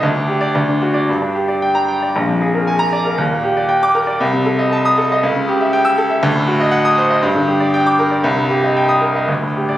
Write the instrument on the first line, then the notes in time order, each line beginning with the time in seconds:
grand piano
0.03 D2
0.16 D4
0.28 G4
0.41 D5
0.55 D2
0.69 D4
0.82 F#4
0.94 D5
1.09 G2
1.22 D4
1.35 G4
1.48 D5
1.62 G5
1.75 A#5
1.88 G5
2.02 D5
2.16 A#1
2.28 F2
2.42 G#4
2.55 A#4
2.67 G#5
2.79 A#5
2.92 D5
3.05 A#4
3.18 D#2
3.31 A#2
3.44 G4
3.57 D5
3.69 G5
3.83 D6
3.95 A#4
4.07 D5
4.20 C2
4.33 C3
4.46 A4
4.59 D#5
4.72 A5
4.85 D#6
4.98 A4
5.12 D#5
5.23 C#2
5.36 C#3
5.49 G4
5.61 E5
5.73 G5
5.85 E6
5.98 A4
6.10 E5
6.23 D2
6.36 A2
6.48 F#4
6.60 D#5
6.71 F#5
6.85 D#6
6.98 C5
7.10 D#5
7.22 G2
7.35 D3
7.48 G4
7.60 D5
7.74 G5
7.87 D6
7.99 A#4
8.11 D5
8.24 C2
8.37 G2
8.49 G4
8.64 D#5
8.77 G5
8.89 D#6
9.01 A#4
9.15 D#5
9.28 D2
9.42 A2
9.56 G4
9.69 D5